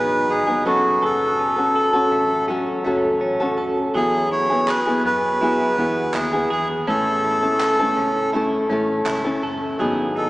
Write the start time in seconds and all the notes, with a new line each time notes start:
Already playing: A1 F#3 B3 D#4 G#4 B4
0.29 G#1 D#4 G#4
0.47 F#3 B3 D#4 G#4
0.65 F#1 F#3 C#4 F#4 A4
1.02 F#1 F#3 A4
1.39 C#4
1.56 C#4 F#4 A4
1.76 A4
1.93 C#4 F#4 A4
2.12 A1 A3
2.48 F#3 C#4 F#4 A4
2.84 F#1 F#3 A3 C#4 F#4 A4 C#5
3.04 A4
3.21 A1 C#4 C#5
3.40 C#4 F#4 A4
3.58 F#1 F#4 A4
3.77 A4
3.94 E2 F#3 B3 E4 G#4
4.31 E4 C#5
4.50 B3 E4 G#4
4.68 G#4 B4, clap
4.86 B3 E4 G#4
5.05 F#2 B3 B4
5.41 F#3 B3 E4 G#4
5.78 E2 F#3 B3 E4 G#4
6.14 D#2 E4 G#4, clap
6.33 B3 E4 G#4
6.50 E2 G#4
6.87 A1 A3 C#4 E4 A4
7.24 E4
7.42 A3 C#4 E4 A4
7.60 A4, clap
7.79 A3 C#4 E4 A4
7.97 C#2 C#4
8.33 A3 C#4 E4 A4
8.70 A1 A3 C#4 E4 A4
9.06 C#2 E4, clap
9.24 A3 C#4 E4 A4
9.43 F#1 A4
9.79 G#1 F#3 B3 D#4 G#4
10.16 D#4 A4